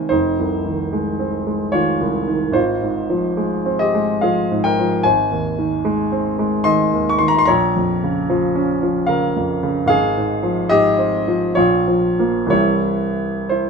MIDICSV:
0, 0, Header, 1, 2, 480
1, 0, Start_track
1, 0, Tempo, 818554
1, 64, Time_signature, 3, 2, 24, 8
1, 1982, Tempo, 851064
1, 2462, Tempo, 810811
1, 6302, Tempo, 855920
1, 6782, Tempo, 936037
1, 7262, Tempo, 993377
1, 7836, End_track
2, 0, Start_track
2, 0, Title_t, "Grand piano"
2, 0, Program_c, 0, 0
2, 0, Control_c, 0, 64, 127
2, 0, Note_on_c, 0, 48, 40
2, 0, Note_on_c, 0, 51, 44
2, 0, Note_on_c, 0, 56, 41
2, 0, Note_on_c, 0, 60, 46
2, 0, Note_on_c, 0, 70, 57
2, 0, Note_on_c, 0, 72, 56
2, 0, Note_on_c, 0, 79, 79
2, 0, Note_on_c, 0, 80, 65
2, 53, Note_off_c, 0, 72, 0
2, 53, Note_on_c, 0, 72, 81
2, 60, Note_on_c, 0, 63, 57
2, 64, Note_off_c, 0, 80, 0
2, 64, Note_on_c, 0, 29, 49
2, 66, Note_off_c, 0, 51, 0
2, 73, Control_c, 0, 64, 0
2, 75, Note_off_c, 0, 48, 0
2, 76, Note_off_c, 0, 60, 0
2, 77, Note_off_c, 0, 56, 0
2, 78, Note_off_c, 0, 70, 0
2, 78, Note_off_c, 0, 79, 0
2, 192, Control_c, 0, 64, 127
2, 232, Note_on_c, 0, 36, 40
2, 388, Note_on_c, 0, 51, 48
2, 486, Note_off_c, 0, 36, 0
2, 544, Note_on_c, 0, 56, 50
2, 641, Note_off_c, 0, 51, 0
2, 701, Note_on_c, 0, 60, 47
2, 798, Note_off_c, 0, 56, 0
2, 862, Note_on_c, 0, 56, 44
2, 957, Note_off_c, 0, 60, 0
2, 997, Note_off_c, 0, 63, 0
2, 1008, Note_on_c, 0, 73, 84
2, 1015, Note_on_c, 0, 65, 62
2, 1017, Note_off_c, 0, 72, 0
2, 1018, Note_on_c, 0, 51, 48
2, 1118, Note_off_c, 0, 56, 0
2, 1179, Note_on_c, 0, 36, 45
2, 1276, Note_off_c, 0, 51, 0
2, 1333, Note_on_c, 0, 51, 52
2, 1435, Note_off_c, 0, 36, 0
2, 1472, Note_off_c, 0, 65, 0
2, 1476, Note_off_c, 0, 29, 0
2, 1476, Note_on_c, 0, 32, 65
2, 1486, Note_on_c, 0, 72, 79
2, 1492, Note_off_c, 0, 73, 0
2, 1493, Note_on_c, 0, 65, 61
2, 1495, Note_off_c, 0, 51, 0
2, 1512, Control_c, 0, 64, 0
2, 1589, Control_c, 0, 64, 127
2, 1656, Note_on_c, 0, 44, 44
2, 1817, Note_on_c, 0, 53, 52
2, 1915, Note_off_c, 0, 44, 0
2, 1978, Note_on_c, 0, 56, 58
2, 2077, Note_off_c, 0, 53, 0
2, 2139, Note_on_c, 0, 60, 57
2, 2197, Note_off_c, 0, 65, 0
2, 2215, Note_on_c, 0, 75, 83
2, 2216, Note_off_c, 0, 72, 0
2, 2222, Note_on_c, 0, 67, 60
2, 2237, Note_off_c, 0, 56, 0
2, 2301, Note_on_c, 0, 56, 53
2, 2397, Note_off_c, 0, 60, 0
2, 2444, Note_off_c, 0, 67, 0
2, 2452, Note_on_c, 0, 77, 77
2, 2457, Note_off_c, 0, 75, 0
2, 2461, Note_on_c, 0, 53, 52
2, 2461, Note_on_c, 0, 68, 55
2, 2557, Note_off_c, 0, 56, 0
2, 2632, Note_on_c, 0, 44, 46
2, 2684, Note_off_c, 0, 68, 0
2, 2696, Note_off_c, 0, 77, 0
2, 2704, Note_on_c, 0, 79, 89
2, 2710, Note_on_c, 0, 70, 67
2, 2717, Note_off_c, 0, 53, 0
2, 2796, Note_on_c, 0, 53, 54
2, 2878, Note_off_c, 0, 44, 0
2, 2900, Note_off_c, 0, 32, 0
2, 2924, Note_off_c, 0, 70, 0
2, 2936, Note_off_c, 0, 79, 0
2, 2937, Note_on_c, 0, 80, 91
2, 2943, Note_off_c, 0, 53, 0
2, 2945, Note_on_c, 0, 72, 61
2, 2947, Control_c, 0, 64, 0
2, 2950, Note_on_c, 0, 32, 58
2, 3059, Control_c, 0, 64, 127
2, 3103, Note_on_c, 0, 39, 46
2, 3265, Note_on_c, 0, 51, 56
2, 3351, Note_off_c, 0, 39, 0
2, 3419, Note_on_c, 0, 56, 64
2, 3513, Note_off_c, 0, 51, 0
2, 3581, Note_on_c, 0, 60, 59
2, 3671, Note_off_c, 0, 56, 0
2, 3740, Note_on_c, 0, 56, 57
2, 3833, Note_off_c, 0, 60, 0
2, 3873, Note_off_c, 0, 72, 0
2, 3888, Note_on_c, 0, 84, 101
2, 3893, Note_off_c, 0, 80, 0
2, 3894, Note_on_c, 0, 75, 76
2, 3896, Note_on_c, 0, 51, 58
2, 3994, Note_off_c, 0, 56, 0
2, 4061, Note_on_c, 0, 39, 51
2, 4140, Note_off_c, 0, 75, 0
2, 4154, Note_off_c, 0, 51, 0
2, 4156, Note_off_c, 0, 84, 0
2, 4157, Note_on_c, 0, 85, 93
2, 4211, Note_on_c, 0, 84, 90
2, 4213, Note_off_c, 0, 85, 0
2, 4220, Note_on_c, 0, 51, 52
2, 4268, Note_off_c, 0, 84, 0
2, 4268, Note_on_c, 0, 82, 98
2, 4319, Note_off_c, 0, 39, 0
2, 4325, Note_off_c, 0, 82, 0
2, 4329, Note_on_c, 0, 84, 99
2, 4365, Note_off_c, 0, 32, 0
2, 4371, Note_on_c, 0, 82, 104
2, 4383, Note_off_c, 0, 51, 0
2, 4383, Note_off_c, 0, 84, 0
2, 4383, Note_on_c, 0, 73, 77
2, 4384, Note_on_c, 0, 34, 65
2, 4393, Control_c, 0, 64, 0
2, 4487, Control_c, 0, 64, 127
2, 4553, Note_on_c, 0, 41, 47
2, 4714, Note_on_c, 0, 49, 51
2, 4808, Note_off_c, 0, 41, 0
2, 4868, Note_on_c, 0, 53, 62
2, 4966, Note_off_c, 0, 49, 0
2, 5022, Note_on_c, 0, 61, 59
2, 5121, Note_off_c, 0, 53, 0
2, 5183, Note_on_c, 0, 53, 51
2, 5278, Note_off_c, 0, 61, 0
2, 5321, Note_off_c, 0, 73, 0
2, 5324, Note_on_c, 0, 77, 86
2, 5332, Note_on_c, 0, 70, 68
2, 5335, Note_on_c, 0, 49, 55
2, 5339, Note_off_c, 0, 82, 0
2, 5440, Note_off_c, 0, 53, 0
2, 5500, Note_on_c, 0, 41, 49
2, 5561, Note_off_c, 0, 70, 0
2, 5574, Note_off_c, 0, 77, 0
2, 5595, Note_off_c, 0, 49, 0
2, 5658, Note_on_c, 0, 49, 59
2, 5756, Note_off_c, 0, 41, 0
2, 5795, Note_on_c, 0, 32, 69
2, 5799, Note_off_c, 0, 34, 0
2, 5804, Note_on_c, 0, 77, 102
2, 5815, Note_on_c, 0, 68, 79
2, 5819, Note_off_c, 0, 49, 0
2, 5831, Control_c, 0, 64, 0
2, 5923, Control_c, 0, 64, 127
2, 5983, Note_on_c, 0, 44, 48
2, 6132, Note_on_c, 0, 53, 59
2, 6237, Note_off_c, 0, 44, 0
2, 6273, Note_off_c, 0, 68, 0
2, 6288, Note_on_c, 0, 75, 102
2, 6291, Note_off_c, 0, 77, 0
2, 6295, Note_on_c, 0, 67, 77
2, 6300, Note_on_c, 0, 44, 55
2, 6391, Note_off_c, 0, 53, 0
2, 6451, Note_on_c, 0, 60, 57
2, 6553, Note_off_c, 0, 44, 0
2, 6616, Note_on_c, 0, 53, 51
2, 6712, Note_off_c, 0, 60, 0
2, 6745, Note_off_c, 0, 32, 0
2, 6755, Note_off_c, 0, 67, 0
2, 6769, Note_on_c, 0, 73, 89
2, 6775, Note_off_c, 0, 75, 0
2, 6778, Note_on_c, 0, 34, 63
2, 6779, Note_on_c, 0, 65, 69
2, 6780, Note_off_c, 0, 53, 0
2, 6792, Control_c, 0, 64, 0
2, 6874, Control_c, 0, 64, 127
2, 6938, Note_on_c, 0, 53, 47
2, 7091, Note_off_c, 0, 53, 0
2, 7099, Note_on_c, 0, 53, 46
2, 7101, Note_on_c, 0, 58, 53
2, 7239, Note_on_c, 0, 36, 58
2, 7240, Note_off_c, 0, 65, 0
2, 7245, Note_off_c, 0, 34, 0
2, 7247, Note_off_c, 0, 53, 0
2, 7247, Note_on_c, 0, 48, 44
2, 7248, Note_off_c, 0, 58, 0
2, 7250, Note_off_c, 0, 73, 0
2, 7256, Note_on_c, 0, 52, 47
2, 7258, Note_on_c, 0, 73, 86
2, 7262, Note_on_c, 0, 55, 46
2, 7267, Note_on_c, 0, 64, 64
2, 7271, Control_c, 0, 64, 0
2, 7383, Control_c, 0, 64, 127
2, 7727, Note_off_c, 0, 64, 0
2, 7738, Note_on_c, 0, 72, 64
2, 7742, Note_off_c, 0, 73, 0
2, 7746, Note_on_c, 0, 64, 50
2, 7836, Note_off_c, 0, 36, 0
2, 7836, Note_off_c, 0, 48, 0
2, 7836, Note_off_c, 0, 52, 0
2, 7836, Note_off_c, 0, 55, 0
2, 7836, Note_off_c, 0, 64, 0
2, 7836, Note_off_c, 0, 72, 0
2, 7836, End_track
0, 0, End_of_file